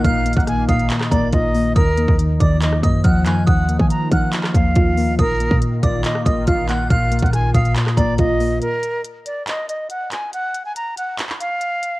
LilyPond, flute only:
\new Staff \with { instrumentName = "Flute" } { \time 4/4 \key bes \phrygian \tempo 4 = 140 f''8. ges''16 aes''8 f''8 r8 d''8 ees''4 | bes'4 r8 d''8 ees''8 ees''8 ges''8 aes''8 | ges''8. aes''16 bes''8 ges''8 r8 f''4. | bes'4 r8 d''8 ees''8 ees''8 f''8 ges''8 |
f''8. ges''16 aes''8 f''8 r8 d''8 ees''4 | bes'4 r8 d''8 ees''8 ees''8 ges''8 aes''8 | ges''8. aes''16 bes''8 ges''8 r8 f''4. | }